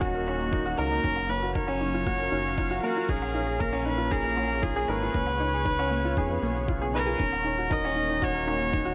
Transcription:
Already playing: D#1 D#3 A#3 C#4 D#4 F#4 A#4 C#5
0.00 D#4 F#4, kick, shaker
0.14 A#4, shaker
0.26 C#4 D#4, low woodblock, shaker
0.39 shaker
0.52 A#3 D#4, kick, shaker
0.65 F#4, shaker
0.77 C#2 D#4 A#4, shaker
0.90 D#4, shaker
1.03 F#1 F#3 C#4 D#4, kick, shaker
1.09 C#4
1.16 low woodblock, shaker
1.29 A#3 C#4 B4, shaker
1.41 F#4 F5, shaker
1.54 D#4 A#4 C#5, kick, shaker
1.67 C#4, low woodblock, shaker
1.80 D#4, shaker
1.94 F4 A#4, shaker
2.06 A#3 F#4, kick, shaker
2.19 A#4, shaker
2.32 F#1 C#4 D#4, shaker
2.45 shaker
2.58 D#4 F4, kick, shaker
2.71 F#4, shaker
2.83 A#3 F#4 A#4, shaker
2.96 F4, shaker
3.09 A#1 A#2 C#4 D#4 G#4, kick, shaker
3.22 low woodblock, shaker
3.28 A#3
3.34 C#4 D#4, shaker
3.47 G#4, shaker
3.60 A#3 A#4, kick, shaker
3.73 C#4, low woodblock, shaker
3.86 D#4 G#4 B4, shaker
3.98 F4 C#5, shaker
4.11 D#4 G#4 A#4, kick, shaker
4.24 A#4, shaker
4.37 A#3 C#4, low woodblock, shaker
4.50 shaker
4.62 D#4 F4 G#4, kick, shaker
4.76 G#4, shaker
4.88 G#1 D#4 A#4 B4, shaker
5.01 F4, shaker
5.14 C#2 C#3 A#3 C#4, kick, shaker
5.26 low woodblock, shaker
5.39 C#4 D#4, shaker
5.53 B3 F4 G#4, shaker
5.65 D#4 B4, kick, shaker
5.79 C#4, low woodblock, shaker
5.91 A#3, shaker
6.03 F4, shaker
6.17 F2 D#4 G#4, kick, shaker
6.30 B4, shaker
6.43 B1 A#3 C#4, shaker
6.56 shaker
6.68 F4, kick, shaker
6.82 G#4, shaker
6.93 D#4 A#4 B4, shaker
7.06 F4 G#4, shaker
7.19 D#1 D#3 C#4 D#4, kick, shaker
7.32 low woodblock, shaker
7.38 A#3
7.44 C#4 D#4, shaker
7.58 F#4, shaker
7.70 D#4 A#4 D#5, kick, shaker
7.79 F#4
7.84 C#4, low woodblock, shaker
7.96 D#4, shaker
8.09 D#4, shaker
8.22 D#4 F#4 C#5, kick, shaker
8.35 A#4, shaker
8.47 C#4 D#4, low woodblock, shaker
8.60 shaker
8.73 D#4, kick, shaker
8.85 F#4, shaker

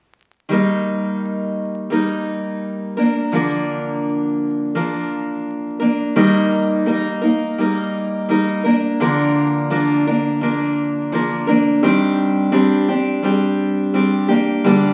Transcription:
0.49 D#3 G3 A#3 D#4 A#4
1.90 G3 A#3 D#4 A#4
2.97 A#3 D4 A#4
3.32 D3 F3 A#3 D4 A#4
4.75 F3 A#3 D4 A#4
5.80 A#3 D4 A#4
6.16 D#3 G3 A#3 D#4 A#4
6.86 G3 A#3 D#4 A#4
7.22 A#3 D#4 A#4
7.58 G3 A#3 D#4 A#4
8.29 G3 A#3 D#4 A#4
8.64 A#3 D4 A#4
9.00 D3 F3 A#3 D4 A#4
9.70 F3 A#3 D4 A#4
10.07 A#3 D4 A#4
10.41 F3 A#3 D4 A#4
11.12 F3 A#3 D4 A#4
11.47 A#3 D4 A#4
11.83 D#3 G3 C4 D4 G4
12.52 G3 C4 D4 G4
12.88 C4 D4 G4
13.23 G3 C4 D4 G4
13.94 G3 C4 D4 G4
14.28 A#3 D4 G4
14.64 D3 G3 A#3 D4 G4

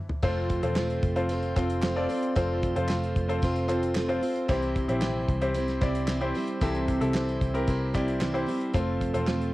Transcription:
0.10 floor tom
0.23 F1 F3 A3 C4 F4 A4 C5, kick, crash
0.50 kick, closed hi-hat
0.63 E1 C4 F4 A4 C5, closed hi-hat
0.76 F3 A3 C4 F4 C5, snare, clap
0.90 closed hi-hat
1.03 F1, kick, closed hi-hat
1.16 C4 F4 A4 C5, closed hi-hat
1.29 A3 C4 F4 C5, closed hi-hat
1.43 closed hi-hat
1.56 F1 C4 F4 A4 C5, kick, clap, closed hi-hat
1.70 closed hi-hat
1.82 F3 A3 C4 F4 C5, snare, clap
1.96 C4 F4 A4 D5
2.09 C4 F4 C5, open hi-hat
2.23 closed hi-hat
2.35 F1 F3 A3 C4 F4 A4 C5, kick, closed hi-hat
2.63 kick, closed hi-hat
2.75 F1 C4 F4 A4 C5, closed hi-hat
2.88 F3 A3 C4 F4 C5, snare, clap
3.03 closed hi-hat
3.16 F1, kick, closed hi-hat
3.28 C4 F4 A4 C5, closed hi-hat
3.42 F1 A3 C4 F4 C5, kick, closed hi-hat
3.56 closed hi-hat
3.68 C4 F4 A4 C5, clap, closed hi-hat
3.83 closed hi-hat
3.95 F3 A3 C4 F4 C5, snare, clap
4.08 C4 F4 A4 C5, closed hi-hat
4.21 C4 F4 C5, open hi-hat
4.36 closed hi-hat
4.48 C2 C3 E3 G3 C4 E4 G4 C5, kick, closed hi-hat
4.62 closed hi-hat
4.76 kick, closed hi-hat
4.88 A#1 C4 E4 G4 C5, closed hi-hat
5.01 C3 E3 G3 C4 E4 C5, snare, clap
5.28 C2, kick, closed hi-hat
5.41 C4 E4 G4 C5, closed hi-hat
5.54 G3 C4 E4 C5, closed hi-hat
5.68 snare, closed hi-hat
5.81 C2 G3 C4 E4 G4 C5 D5, kick, clap, closed hi-hat
5.95 closed hi-hat
6.08 C3 E3 G3 C4 E4 C5, snare, clap
6.21 C4 E4 G4 C5, closed hi-hat
6.34 G3 C4 E4 C5, open hi-hat
6.48 closed hi-hat
6.61 C2 C3 E3 G3 C4 E4 G4 A4 C5, kick, closed hi-hat
6.75 closed hi-hat
6.88 kick, closed hi-hat
7.00 C2 C4 E4 G4 A4, closed hi-hat
7.14 C3 E3 G3 C4 E4 C5, snare, clap
7.29 closed hi-hat
7.41 C2, kick, closed hi-hat
7.54 C4 E4 G4 A#4, closed hi-hat
7.67 C2 G3 C4 E4 C5, kick, closed hi-hat
7.94 G3 C4 E4 G4 C5 D5, kick, clap, closed hi-hat
8.08 closed hi-hat
8.20 C3 E3 G3 C4 E4 C5, snare, clap
8.34 C4 E4 G4 C5, closed hi-hat
8.46 G3 C4 E4 C5, open hi-hat
8.61 closed hi-hat
8.73 F1 F3 A3 C4 F4 A4 C5, kick, closed hi-hat
9.01 kick, closed hi-hat
9.14 E1 C4 F4 A4 C5, closed hi-hat
9.27 F3 A3 C4 F4 C5, snare, clap
9.42 closed hi-hat

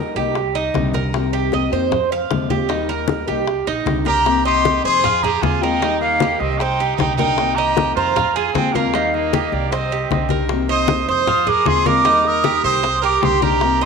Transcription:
Already playing: G3 A#3 D#4 A#4
0.00 G4
0.16 C2 G3 A#3 D#4 G4, high bongo, high conga
0.35 muted nylon-string guitar stroke, high bongo, high conga
0.55 D#4, high bongo, high conga
0.74 C2 C3 D#3 G3 D4 G4, high bongo, low bongo, high conga
0.94 G3 D4 G4 A#4, high bongo, high conga
1.13 C3 D#3 A#3 C4 G4, high bongo, high conga
1.33 G4, high conga
1.52 D#3 A#3 C4 G4 D#5, high bongo, high conga
1.71 F2 D#3 A#3 C4 G4 C5
1.91 muted nylon-string guitar stroke, high bongo, high conga, low conga
2.12 F5, high conga
2.30 D#2 C3 F3 G#3 C4 F4, high bongo, low bongo, high conga
2.50 G#3 C4 F4 G4, high conga
2.69 D#3 G3 A#3 D#4 G4, high bongo, high conga
2.89 A#4, high conga
3.08 G3 A#3 D#4 G4, high bongo, high conga
3.27 C2 G3 A#3 D#4 G4, high bongo, high conga
3.47 muted nylon-string guitar stroke, high bongo, high conga
3.67 A#1 D#4, high bongo, high conga
3.85 C2 C3 D#3 G3 D4 G4, high bongo, low bongo, high conga
4.05 G3 D4 G4 A#4 A#5, high bongo, high conga
4.24 C3 D#3 A#3 C4 G4, high bongo, high conga
4.45 G4 D#5 C6, high conga
4.65 high bongo, high conga
4.84 F2 G#4 C5 C6, high conga
5.03 F4, muted nylon-string guitar stroke, high bongo, high conga, low conga
5.22 G4 G#4 A#5, high conga, low conga
5.42 D#2 F3 G#3 C4 F4 G#5, high bongo, low bongo, high conga
5.61 F3 G#3 C4 D#4 F4 A#4 G5
5.80 D#3 G3 A#3 D#4 G4, high bongo, high conga
6.00 A#3 F5, high bongo, high conga
6.20 G4, high bongo, high conga
6.39 C2 C4 D#5, high bongo, high conga
6.58 D#4 C5 G5, muted nylon-string guitar stroke, high bongo, high conga
6.80 G4, high conga
6.97 C2 D#3 G3 D4 D#4 G4 G5, high bongo, low bongo, high conga
7.16 D4 D#4 G4 A#4 G5, high bongo, high conga
7.20 D#3 G3
7.37 C3 D#3 A#3 C4 G4, high bongo, high conga
7.55 G4 D#5 A#5, high conga
7.77 high bongo, high conga
7.95 F2 F4 C5 A#5, high conga
8.16 F4, muted nylon-string guitar stroke, high bongo, high conga, low conga
8.34 F4 G#4 G#5, high conga
8.53 D#2 F3 G#3 C4 F4 G5, high bongo, low bongo, high conga
8.72 F3 G#3 A#3 C4 F4 A#4 F5, high conga
8.93 D#3 G3 A#3 D#4 G4, high bongo, high conga
9.11 A#3 D#5, high bongo, high conga
9.33 G4, high bongo, high conga
9.51 C2 A#3 D5, high bongo, high conga
9.71 C4 C5 D#5, muted nylon-string guitar stroke, high bongo, high conga
9.91 G4, high conga
10.10 C2 D#3 G3 C4 D4 G4 D#5, high bongo, low bongo, high conga
10.29 D#3 G3 D4 G4 A#4, high bongo, high conga
10.48 C3 D#3 A#3 C4 G4, high bongo, high conga
10.68 C5 D#5 D#6, high conga
10.88 high bongo, high conga
11.08 F2 C5 D#6, high conga
11.27 F4, muted nylon-string guitar stroke, high bongo, high conga, low conga
11.47 G#4 A#4 D6, high conga, low conga
11.65 D#2 F3 G#3 C4 F4 G#4 C6, high bongo, low bongo, high conga
11.85 F3 G#3 C4 F4 A#4 D6, high conga
12.04 D#3 G3 A#3 D#4 G4, high bongo, high conga
12.24 A#4 D#6, high bongo, high conga
12.44 G4, high bongo, high conga
12.63 C2 C5 D#6, high bongo, high conga
12.83 C5, muted nylon-string guitar stroke, high bongo, high conga
13.01 G4 A#4 D6, high conga
13.22 C2 D#3 G3 D4 G4 C6, high bongo, low bongo, high conga
13.41 D#3 G3 D4 G4 A#4 A#5, high bongo, high conga
13.60 C3 D#3 A#3 C4 G4, high bongo, high conga
13.81 G4 D#5 C6, high conga

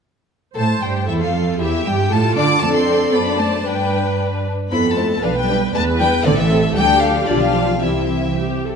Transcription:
0.55 A2 A3 A4 C5 A5
0.82 G2 G3 G4 G5
1.07 E2 E3 E4 A4 E5
1.21 F2 F3 F4 F5
1.59 E2 E3 E4 G4 E5
1.85 G2 G3 G4 G5
2.11 A2 A3 F4 A4 A5
2.36 D3 D4 D5 D6
2.61 F2 A3 D4 A4 D5 A5
2.74 C4 C6
3.12 F#2 B3 D4 C5 D5 B5
3.39 A3 A5
3.66 G2 G3 D4 B4 G5
4.71 F2 B3 E4 A4 C5 B5
4.97 A3 E4 C5 A5
5.23 B1 F3 D4 B4 F5
5.36 G3 G5
5.50 D4 B4
5.74 E2 A3 D4 B4 A5
6.00 G3 D4 B4 G5
6.25 A1 D3 C4 A4 D5
6.37 E3 E5
6.50 C4 A4
6.75 D2 G3 D4 G4 A4 G5
7.01 F3 F5
7.27 B1 D3 D4 F4 G4 D5
7.41 F3 F5
7.81 C2 E3 C4 E4 G4 E5
8.37 G4
8.65 A4

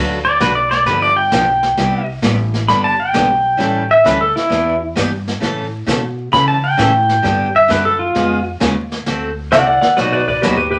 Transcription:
Already playing: D2 D3 F#3 A3 D4 F#4 B4
0.25 D5
0.40 B1 D3 F#3 A3 D4 F#4 B4, snare, hi-hat pedal
0.55 D5
0.71 D5, snare
0.86 G1 D3 F3 B3 D4 G4 B4, brush sweep, snare
1.02 D5
1.16 G5
1.31 B1 D3 F3 B3 D4 G4, snare, hi-hat pedal
1.63 snare
1.77 C2 C3 G3 B3 E4 G4, brush sweep, snare
2.22 A1 C3 G3 B3 E4 G4, snare, hi-hat pedal
2.54 snare
2.68 G1 D3 G3 B3 D4 G4 B5, brush sweep, snare
2.84 A5
3.00 G5
3.13 B1 D3 G3 B3 D4 G4, snare, hi-hat pedal
3.57 A1 E3 G3 C#4 E4 A4, brush sweep, snare
3.91 E5
4.04 D2 E3 G3 C#4 E4 A4 B4, snare, hi-hat pedal
4.21 A4
4.36 E4, muted upright bass stroke, snare
4.49 E2 E3 B3 D4 G4, brush sweep, snare
4.96 G2 E3 B3 D4 G4, snare, hi-hat pedal
5.28 snare
5.40 A2 C#3 E3 A3 C#4 A4, brush sweep, snare
5.86 B2 C#3 E3 A3 C#4 A4, snare, hi-hat pedal
6.32 C#3 E3 A3 C#4 A4 B5, brush sweep, snare
6.48 A5
6.64 G5
6.77 A2 C#3 E3 A3 C#4 A4, snare, hi-hat pedal
7.09 snare
7.22 G2 D3 G3 B3 D4 G4, brush sweep, snare
7.56 E5
7.68 F#2 D3 G3 B3 D4 G4 B4, snare, hi-hat pedal
7.85 A4
7.99 F4
8.15 F2 C#3 G#3 B3 F4 G#4, brush sweep, snare
8.60 D#2 C#3 G#3 B3 F4 G#4, snare, hi-hat pedal
8.92 snare
9.06 D2 D3 A3 C4 F#4 A4, brush sweep, snare
9.52 C2 D3 A3 C4 F#4 A4 D5 F#5, snare, hi-hat pedal
9.67 D5 F#5
9.81 D5 F#5, muted upright bass stroke, snare
9.96 B1 B2 F#3 B3 D#4 F#4 B4 D5, brush sweep, snare
10.12 B4 D5
10.28 B4 D5, kick
10.42 D#2 B2 F#3 B3 D#4 F#4 G4 B4, snare, hi-hat pedal
10.56 G4 B4
10.71 G4 B4

